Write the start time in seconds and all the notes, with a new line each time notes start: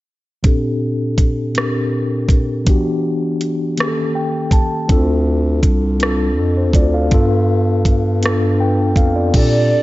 0.43 A#2 C4 D4 G4 A4, kick, closed hi-hat
1.18 kick, closed hi-hat
1.54 A#2 C4 D4 G4, cross-stick, closed hi-hat
1.58 A#4
2.29 kick, closed hi-hat
2.65 E3 B3 D4 F#4, kick, closed hi-hat
2.69 G4
3.41 closed hi-hat
3.77 D#3 A#3 C#4 G4, cross-stick, closed hi-hat
3.81 G#4
3.88 A4
4.15 G5
4.51 A5, kick, closed hi-hat
4.88 D2 C4 D4 F4, kick, closed hi-hat
4.92 A4
5.63 C2, kick, closed hi-hat
5.99 C4 D4 F4, cross-stick, closed hi-hat
6.03 A4
6.38 F2 C4 A4
6.57 C5
6.73 D2 F4 D5, kick, closed hi-hat
6.94 A4 F5
7.10 G2 B3 D4 F4, kick, closed hi-hat
7.14 A4
7.85 G2, kick, closed hi-hat
8.21 B3 D4 F4, closed hi-hat
8.25 A4, cross-stick
8.60 B4 G5
8.96 F2 A4 F5, kick, closed hi-hat
9.16 F4 D5
9.32 A#2 C4 D4 G4, kick, closed hi-hat, crash
9.36 A4 D5